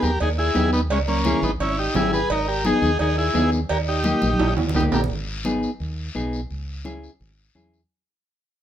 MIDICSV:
0, 0, Header, 1, 5, 480
1, 0, Start_track
1, 0, Key_signature, 5, "minor"
1, 0, Tempo, 350263
1, 1235, Time_signature, 4, 2, 24, 8
1, 11824, End_track
2, 0, Start_track
2, 0, Title_t, "Transistor combo organ"
2, 0, Program_c, 0, 18
2, 36, Note_on_c, 0, 67, 72
2, 50, Note_on_c, 0, 70, 85
2, 259, Note_off_c, 0, 67, 0
2, 267, Note_off_c, 0, 70, 0
2, 293, Note_on_c, 0, 63, 69
2, 305, Note_on_c, 0, 68, 88
2, 397, Note_off_c, 0, 63, 0
2, 406, Note_off_c, 0, 68, 0
2, 525, Note_on_c, 0, 64, 75
2, 538, Note_on_c, 0, 68, 93
2, 966, Note_off_c, 0, 64, 0
2, 973, Note_off_c, 0, 68, 0
2, 1000, Note_on_c, 0, 59, 63
2, 1010, Note_on_c, 0, 63, 85
2, 1106, Note_off_c, 0, 59, 0
2, 1114, Note_off_c, 0, 63, 0
2, 1242, Note_on_c, 0, 56, 67
2, 1258, Note_on_c, 0, 61, 88
2, 1348, Note_off_c, 0, 56, 0
2, 1360, Note_off_c, 0, 61, 0
2, 1476, Note_on_c, 0, 58, 69
2, 1491, Note_on_c, 0, 61, 84
2, 1920, Note_off_c, 0, 58, 0
2, 1963, Note_on_c, 0, 59, 64
2, 1975, Note_off_c, 0, 61, 0
2, 1979, Note_on_c, 0, 63, 80
2, 2069, Note_off_c, 0, 59, 0
2, 2081, Note_off_c, 0, 63, 0
2, 2201, Note_on_c, 0, 61, 61
2, 2221, Note_on_c, 0, 64, 83
2, 2419, Note_off_c, 0, 61, 0
2, 2446, Note_on_c, 0, 63, 67
2, 2453, Note_off_c, 0, 64, 0
2, 2455, Note_on_c, 0, 67, 86
2, 2662, Note_off_c, 0, 63, 0
2, 2681, Note_on_c, 0, 64, 73
2, 2689, Note_on_c, 0, 68, 94
2, 2690, Note_off_c, 0, 67, 0
2, 2899, Note_off_c, 0, 64, 0
2, 2900, Note_off_c, 0, 68, 0
2, 2917, Note_on_c, 0, 68, 75
2, 2927, Note_on_c, 0, 71, 93
2, 3137, Note_off_c, 0, 68, 0
2, 3165, Note_off_c, 0, 71, 0
2, 3170, Note_on_c, 0, 63, 74
2, 3179, Note_on_c, 0, 70, 94
2, 3384, Note_off_c, 0, 63, 0
2, 3390, Note_off_c, 0, 70, 0
2, 3399, Note_on_c, 0, 67, 70
2, 3407, Note_on_c, 0, 70, 84
2, 3617, Note_off_c, 0, 67, 0
2, 3636, Note_on_c, 0, 63, 72
2, 3645, Note_off_c, 0, 70, 0
2, 3652, Note_on_c, 0, 68, 93
2, 4078, Note_off_c, 0, 63, 0
2, 4087, Note_off_c, 0, 68, 0
2, 4110, Note_on_c, 0, 63, 69
2, 4126, Note_on_c, 0, 68, 89
2, 4332, Note_off_c, 0, 63, 0
2, 4341, Note_off_c, 0, 68, 0
2, 4357, Note_on_c, 0, 64, 69
2, 4366, Note_on_c, 0, 68, 90
2, 4799, Note_off_c, 0, 64, 0
2, 4804, Note_off_c, 0, 68, 0
2, 5070, Note_on_c, 0, 67, 68
2, 5075, Note_on_c, 0, 70, 95
2, 5177, Note_off_c, 0, 67, 0
2, 5181, Note_off_c, 0, 70, 0
2, 5321, Note_on_c, 0, 63, 67
2, 5325, Note_on_c, 0, 67, 89
2, 6219, Note_off_c, 0, 63, 0
2, 6221, Note_off_c, 0, 67, 0
2, 6519, Note_on_c, 0, 63, 63
2, 6528, Note_on_c, 0, 67, 84
2, 6624, Note_off_c, 0, 63, 0
2, 6631, Note_off_c, 0, 67, 0
2, 6767, Note_on_c, 0, 67, 58
2, 6767, Note_on_c, 0, 70, 77
2, 6871, Note_off_c, 0, 67, 0
2, 6871, Note_off_c, 0, 70, 0
2, 11824, End_track
3, 0, Start_track
3, 0, Title_t, "Clean electric guitar"
3, 0, Program_c, 1, 27
3, 0, Note_on_c, 1, 68, 74
3, 140, Note_off_c, 1, 68, 0
3, 746, Note_on_c, 1, 59, 68
3, 752, Note_on_c, 1, 63, 61
3, 762, Note_on_c, 1, 67, 75
3, 1086, Note_off_c, 1, 59, 0
3, 1089, Note_off_c, 1, 63, 0
3, 1094, Note_off_c, 1, 67, 0
3, 1711, Note_on_c, 1, 61, 68
3, 1719, Note_on_c, 1, 64, 65
3, 1729, Note_on_c, 1, 68, 79
3, 2048, Note_off_c, 1, 61, 0
3, 2050, Note_off_c, 1, 64, 0
3, 2056, Note_off_c, 1, 68, 0
3, 2668, Note_on_c, 1, 61, 65
3, 2675, Note_on_c, 1, 64, 65
3, 2684, Note_on_c, 1, 67, 76
3, 3005, Note_off_c, 1, 61, 0
3, 3009, Note_off_c, 1, 64, 0
3, 3013, Note_off_c, 1, 67, 0
3, 3637, Note_on_c, 1, 59, 72
3, 3641, Note_on_c, 1, 63, 65
3, 3646, Note_on_c, 1, 68, 74
3, 3969, Note_off_c, 1, 59, 0
3, 3970, Note_off_c, 1, 63, 0
3, 3973, Note_off_c, 1, 68, 0
3, 4580, Note_on_c, 1, 59, 73
3, 4591, Note_on_c, 1, 63, 61
3, 4598, Note_on_c, 1, 68, 73
3, 4920, Note_off_c, 1, 59, 0
3, 4926, Note_off_c, 1, 63, 0
3, 4927, Note_off_c, 1, 68, 0
3, 5544, Note_on_c, 1, 58, 70
3, 5551, Note_on_c, 1, 63, 62
3, 5557, Note_on_c, 1, 67, 75
3, 5881, Note_off_c, 1, 58, 0
3, 5885, Note_off_c, 1, 63, 0
3, 5887, Note_off_c, 1, 67, 0
3, 6506, Note_on_c, 1, 58, 64
3, 6515, Note_on_c, 1, 63, 61
3, 6522, Note_on_c, 1, 67, 75
3, 6842, Note_off_c, 1, 58, 0
3, 6847, Note_off_c, 1, 63, 0
3, 6850, Note_off_c, 1, 67, 0
3, 7468, Note_on_c, 1, 59, 80
3, 7473, Note_on_c, 1, 63, 70
3, 7481, Note_on_c, 1, 68, 86
3, 7804, Note_off_c, 1, 59, 0
3, 7807, Note_off_c, 1, 63, 0
3, 7808, Note_off_c, 1, 68, 0
3, 8425, Note_on_c, 1, 59, 76
3, 8430, Note_on_c, 1, 63, 72
3, 8439, Note_on_c, 1, 68, 86
3, 8763, Note_off_c, 1, 59, 0
3, 8767, Note_off_c, 1, 63, 0
3, 8768, Note_off_c, 1, 68, 0
3, 9384, Note_on_c, 1, 61, 75
3, 9389, Note_on_c, 1, 64, 68
3, 9394, Note_on_c, 1, 68, 88
3, 9724, Note_off_c, 1, 61, 0
3, 9724, Note_off_c, 1, 64, 0
3, 9729, Note_off_c, 1, 68, 0
3, 10347, Note_on_c, 1, 61, 68
3, 10353, Note_on_c, 1, 64, 68
3, 10357, Note_on_c, 1, 68, 77
3, 10687, Note_off_c, 1, 61, 0
3, 10690, Note_off_c, 1, 64, 0
3, 10691, Note_off_c, 1, 68, 0
3, 11824, End_track
4, 0, Start_track
4, 0, Title_t, "Fingered electric bass"
4, 0, Program_c, 2, 33
4, 36, Note_on_c, 2, 39, 85
4, 228, Note_off_c, 2, 39, 0
4, 288, Note_on_c, 2, 39, 103
4, 666, Note_off_c, 2, 39, 0
4, 761, Note_on_c, 2, 39, 86
4, 1238, Note_off_c, 2, 39, 0
4, 1238, Note_on_c, 2, 37, 88
4, 1812, Note_off_c, 2, 37, 0
4, 1948, Note_on_c, 2, 32, 100
4, 2142, Note_off_c, 2, 32, 0
4, 2183, Note_on_c, 2, 32, 108
4, 2570, Note_off_c, 2, 32, 0
4, 2670, Note_on_c, 2, 32, 94
4, 3054, Note_off_c, 2, 32, 0
4, 3147, Note_on_c, 2, 32, 90
4, 3723, Note_off_c, 2, 32, 0
4, 3864, Note_on_c, 2, 39, 102
4, 4058, Note_off_c, 2, 39, 0
4, 4112, Note_on_c, 2, 39, 109
4, 4494, Note_off_c, 2, 39, 0
4, 4582, Note_on_c, 2, 39, 90
4, 4968, Note_off_c, 2, 39, 0
4, 5070, Note_on_c, 2, 39, 87
4, 5644, Note_off_c, 2, 39, 0
4, 5795, Note_on_c, 2, 34, 97
4, 5983, Note_off_c, 2, 34, 0
4, 6025, Note_on_c, 2, 34, 100
4, 6218, Note_off_c, 2, 34, 0
4, 6258, Note_on_c, 2, 39, 80
4, 6478, Note_off_c, 2, 39, 0
4, 6504, Note_on_c, 2, 37, 76
4, 6721, Note_off_c, 2, 37, 0
4, 6745, Note_on_c, 2, 34, 78
4, 6962, Note_off_c, 2, 34, 0
4, 6990, Note_on_c, 2, 32, 88
4, 7757, Note_off_c, 2, 32, 0
4, 7951, Note_on_c, 2, 39, 91
4, 8334, Note_off_c, 2, 39, 0
4, 8431, Note_on_c, 2, 35, 85
4, 8814, Note_off_c, 2, 35, 0
4, 8917, Note_on_c, 2, 37, 90
4, 9684, Note_off_c, 2, 37, 0
4, 9872, Note_on_c, 2, 32, 83
4, 10257, Note_off_c, 2, 32, 0
4, 10346, Note_on_c, 2, 40, 81
4, 10734, Note_off_c, 2, 40, 0
4, 11824, End_track
5, 0, Start_track
5, 0, Title_t, "Drums"
5, 30, Note_on_c, 9, 63, 70
5, 35, Note_on_c, 9, 73, 66
5, 167, Note_off_c, 9, 63, 0
5, 172, Note_off_c, 9, 73, 0
5, 275, Note_on_c, 9, 74, 67
5, 280, Note_on_c, 9, 56, 89
5, 280, Note_on_c, 9, 63, 33
5, 412, Note_off_c, 9, 74, 0
5, 417, Note_off_c, 9, 56, 0
5, 417, Note_off_c, 9, 63, 0
5, 754, Note_on_c, 9, 63, 77
5, 757, Note_on_c, 9, 73, 72
5, 758, Note_on_c, 9, 66, 63
5, 891, Note_off_c, 9, 63, 0
5, 894, Note_off_c, 9, 73, 0
5, 895, Note_off_c, 9, 66, 0
5, 997, Note_on_c, 9, 73, 70
5, 1134, Note_off_c, 9, 73, 0
5, 1237, Note_on_c, 9, 63, 31
5, 1239, Note_on_c, 9, 56, 107
5, 1244, Note_on_c, 9, 74, 69
5, 1375, Note_off_c, 9, 63, 0
5, 1376, Note_off_c, 9, 56, 0
5, 1381, Note_off_c, 9, 74, 0
5, 1474, Note_on_c, 9, 63, 68
5, 1611, Note_off_c, 9, 63, 0
5, 1709, Note_on_c, 9, 63, 104
5, 1709, Note_on_c, 9, 64, 74
5, 1715, Note_on_c, 9, 73, 74
5, 1846, Note_off_c, 9, 63, 0
5, 1846, Note_off_c, 9, 64, 0
5, 1852, Note_off_c, 9, 73, 0
5, 1949, Note_on_c, 9, 63, 67
5, 1954, Note_on_c, 9, 73, 62
5, 2086, Note_off_c, 9, 63, 0
5, 2091, Note_off_c, 9, 73, 0
5, 2197, Note_on_c, 9, 56, 85
5, 2198, Note_on_c, 9, 63, 35
5, 2200, Note_on_c, 9, 74, 67
5, 2334, Note_off_c, 9, 56, 0
5, 2335, Note_off_c, 9, 63, 0
5, 2337, Note_off_c, 9, 74, 0
5, 2666, Note_on_c, 9, 63, 80
5, 2666, Note_on_c, 9, 64, 79
5, 2673, Note_on_c, 9, 66, 69
5, 2679, Note_on_c, 9, 73, 73
5, 2803, Note_off_c, 9, 63, 0
5, 2803, Note_off_c, 9, 64, 0
5, 2810, Note_off_c, 9, 66, 0
5, 2816, Note_off_c, 9, 73, 0
5, 2917, Note_on_c, 9, 73, 64
5, 3054, Note_off_c, 9, 73, 0
5, 3149, Note_on_c, 9, 63, 34
5, 3152, Note_on_c, 9, 56, 107
5, 3157, Note_on_c, 9, 74, 71
5, 3286, Note_off_c, 9, 63, 0
5, 3289, Note_off_c, 9, 56, 0
5, 3294, Note_off_c, 9, 74, 0
5, 3628, Note_on_c, 9, 63, 99
5, 3629, Note_on_c, 9, 73, 70
5, 3765, Note_off_c, 9, 63, 0
5, 3766, Note_off_c, 9, 73, 0
5, 3867, Note_on_c, 9, 73, 63
5, 3868, Note_on_c, 9, 63, 69
5, 4004, Note_off_c, 9, 73, 0
5, 4005, Note_off_c, 9, 63, 0
5, 4101, Note_on_c, 9, 56, 89
5, 4107, Note_on_c, 9, 63, 34
5, 4112, Note_on_c, 9, 74, 69
5, 4238, Note_off_c, 9, 56, 0
5, 4244, Note_off_c, 9, 63, 0
5, 4249, Note_off_c, 9, 74, 0
5, 4579, Note_on_c, 9, 63, 81
5, 4588, Note_on_c, 9, 66, 67
5, 4588, Note_on_c, 9, 73, 71
5, 4716, Note_off_c, 9, 63, 0
5, 4725, Note_off_c, 9, 66, 0
5, 4725, Note_off_c, 9, 73, 0
5, 4822, Note_on_c, 9, 73, 64
5, 4959, Note_off_c, 9, 73, 0
5, 5061, Note_on_c, 9, 74, 67
5, 5062, Note_on_c, 9, 63, 32
5, 5063, Note_on_c, 9, 56, 98
5, 5198, Note_off_c, 9, 74, 0
5, 5199, Note_off_c, 9, 63, 0
5, 5200, Note_off_c, 9, 56, 0
5, 5536, Note_on_c, 9, 63, 98
5, 5540, Note_on_c, 9, 73, 70
5, 5673, Note_off_c, 9, 63, 0
5, 5677, Note_off_c, 9, 73, 0
5, 5776, Note_on_c, 9, 73, 63
5, 5779, Note_on_c, 9, 63, 98
5, 5913, Note_off_c, 9, 73, 0
5, 5916, Note_off_c, 9, 63, 0
5, 5942, Note_on_c, 9, 63, 91
5, 6018, Note_on_c, 9, 74, 63
5, 6022, Note_on_c, 9, 56, 83
5, 6022, Note_on_c, 9, 65, 73
5, 6080, Note_off_c, 9, 63, 0
5, 6155, Note_off_c, 9, 74, 0
5, 6159, Note_off_c, 9, 56, 0
5, 6159, Note_off_c, 9, 65, 0
5, 6260, Note_on_c, 9, 65, 69
5, 6271, Note_on_c, 9, 64, 76
5, 6397, Note_off_c, 9, 65, 0
5, 6408, Note_off_c, 9, 64, 0
5, 6430, Note_on_c, 9, 64, 89
5, 6504, Note_on_c, 9, 66, 67
5, 6508, Note_on_c, 9, 73, 71
5, 6567, Note_off_c, 9, 64, 0
5, 6584, Note_on_c, 9, 64, 99
5, 6641, Note_off_c, 9, 66, 0
5, 6645, Note_off_c, 9, 73, 0
5, 6721, Note_off_c, 9, 64, 0
5, 6742, Note_on_c, 9, 66, 99
5, 6748, Note_on_c, 9, 73, 71
5, 6879, Note_off_c, 9, 66, 0
5, 6885, Note_off_c, 9, 73, 0
5, 6904, Note_on_c, 9, 64, 80
5, 6983, Note_on_c, 9, 63, 30
5, 6987, Note_on_c, 9, 74, 70
5, 7041, Note_off_c, 9, 64, 0
5, 7120, Note_off_c, 9, 63, 0
5, 7124, Note_off_c, 9, 74, 0
5, 7466, Note_on_c, 9, 63, 97
5, 7467, Note_on_c, 9, 73, 68
5, 7603, Note_off_c, 9, 63, 0
5, 7604, Note_off_c, 9, 73, 0
5, 7711, Note_on_c, 9, 73, 59
5, 7848, Note_off_c, 9, 73, 0
5, 7950, Note_on_c, 9, 74, 62
5, 7953, Note_on_c, 9, 63, 32
5, 8087, Note_off_c, 9, 74, 0
5, 8090, Note_off_c, 9, 63, 0
5, 8433, Note_on_c, 9, 73, 64
5, 8434, Note_on_c, 9, 63, 81
5, 8570, Note_off_c, 9, 73, 0
5, 8571, Note_off_c, 9, 63, 0
5, 8676, Note_on_c, 9, 73, 67
5, 8813, Note_off_c, 9, 73, 0
5, 8912, Note_on_c, 9, 63, 33
5, 8914, Note_on_c, 9, 74, 65
5, 9049, Note_off_c, 9, 63, 0
5, 9051, Note_off_c, 9, 74, 0
5, 9387, Note_on_c, 9, 63, 89
5, 9397, Note_on_c, 9, 73, 62
5, 9524, Note_off_c, 9, 63, 0
5, 9534, Note_off_c, 9, 73, 0
5, 9641, Note_on_c, 9, 73, 61
5, 9778, Note_off_c, 9, 73, 0
5, 9869, Note_on_c, 9, 63, 32
5, 9878, Note_on_c, 9, 74, 66
5, 10006, Note_off_c, 9, 63, 0
5, 10015, Note_off_c, 9, 74, 0
5, 10351, Note_on_c, 9, 63, 75
5, 10364, Note_on_c, 9, 73, 63
5, 10488, Note_off_c, 9, 63, 0
5, 10501, Note_off_c, 9, 73, 0
5, 10600, Note_on_c, 9, 73, 57
5, 10737, Note_off_c, 9, 73, 0
5, 11824, End_track
0, 0, End_of_file